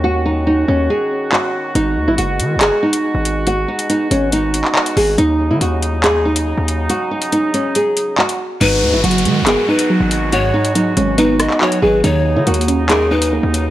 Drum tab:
CC |------------------------------------------------|------------------------------------------------|------------------------------------------------|------------------------------------------------|
HH |------------------------------------------------|x-----------x-----x-----x--------x--------x-----|x--------x--x-----x-----x-----x--------x--o-----|x-----------x-----x-----x--------x--------x-----|
CP |------------------------------------x-----------|------------------------x-----------------------|---------------------------------x--x-----------|------------------------x-----------------------|
SD |------------------------------------------------|------------------------------------------------|------------------------------------------------|------------------------------------------------|

CC |------------------------------------------------|x-----------------------------------------------|------------------------------------------------|------------------------------------------------|
HH |x--------x--x-----x-----x-----x--------x--------|x-----------x-x-x-x-----x--------x--------x-----|x--------x--x-----x-----x-----x--------x--------|x-----------x-x-x-x-----x--------x--------x-----|
CP |------------------------------------x-----------|------------------------x-----------------------|---------------------------------x--x-----------|------------------------x-----------------------|
SD |------------------------------------------------|------------------------------------------------|------------------------------r-----------------|------------------------------------------------|